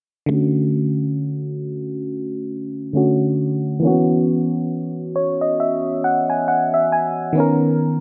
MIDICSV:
0, 0, Header, 1, 2, 480
1, 0, Start_track
1, 0, Tempo, 882353
1, 165, Time_signature, 4, 2, 24, 8
1, 4354, End_track
2, 0, Start_track
2, 0, Title_t, "FM electric piano"
2, 0, Program_c, 0, 5
2, 143, Note_on_c, 0, 50, 64
2, 156, Note_on_c, 0, 57, 61
2, 170, Note_on_c, 0, 61, 57
2, 183, Note_on_c, 0, 66, 70
2, 249, Control_c, 0, 64, 127
2, 1572, Note_off_c, 0, 50, 0
2, 1578, Note_off_c, 0, 57, 0
2, 1586, Note_off_c, 0, 61, 0
2, 1592, Note_off_c, 0, 66, 0
2, 1595, Note_on_c, 0, 50, 52
2, 1603, Note_on_c, 0, 57, 48
2, 1609, Note_on_c, 0, 61, 52
2, 1616, Note_on_c, 0, 66, 62
2, 2066, Note_on_c, 0, 52, 67
2, 2080, Note_off_c, 0, 50, 0
2, 2080, Note_on_c, 0, 58, 49
2, 2084, Note_off_c, 0, 57, 0
2, 2087, Note_off_c, 0, 61, 0
2, 2090, Note_off_c, 0, 66, 0
2, 2093, Control_c, 0, 64, 0
2, 2093, Note_on_c, 0, 61, 59
2, 2106, Note_on_c, 0, 66, 72
2, 2115, Note_on_c, 0, 59, 63
2, 2123, Note_off_c, 0, 58, 0
2, 2183, Control_c, 0, 64, 127
2, 2805, Note_on_c, 0, 73, 62
2, 2934, Note_off_c, 0, 73, 0
2, 2945, Note_on_c, 0, 75, 61
2, 3038, Note_off_c, 0, 75, 0
2, 3046, Note_on_c, 0, 76, 69
2, 3269, Note_off_c, 0, 76, 0
2, 3287, Note_on_c, 0, 78, 70
2, 3415, Note_off_c, 0, 78, 0
2, 3425, Note_on_c, 0, 80, 59
2, 3518, Note_off_c, 0, 80, 0
2, 3525, Note_on_c, 0, 78, 71
2, 3654, Note_off_c, 0, 78, 0
2, 3665, Note_on_c, 0, 76, 63
2, 3758, Note_off_c, 0, 76, 0
2, 3766, Note_on_c, 0, 80, 67
2, 3973, Note_off_c, 0, 52, 0
2, 3986, Note_on_c, 0, 51, 68
2, 3987, Note_off_c, 0, 61, 0
2, 3989, Note_off_c, 0, 80, 0
2, 3993, Note_off_c, 0, 59, 0
2, 3994, Note_off_c, 0, 66, 0
2, 3999, Note_on_c, 0, 59, 59
2, 4011, Control_c, 0, 64, 0
2, 4011, Note_on_c, 0, 61, 61
2, 4025, Note_on_c, 0, 70, 76
2, 4102, Control_c, 0, 64, 127
2, 4354, Note_off_c, 0, 51, 0
2, 4354, Note_off_c, 0, 59, 0
2, 4354, Note_off_c, 0, 61, 0
2, 4354, Note_off_c, 0, 70, 0
2, 4354, End_track
0, 0, End_of_file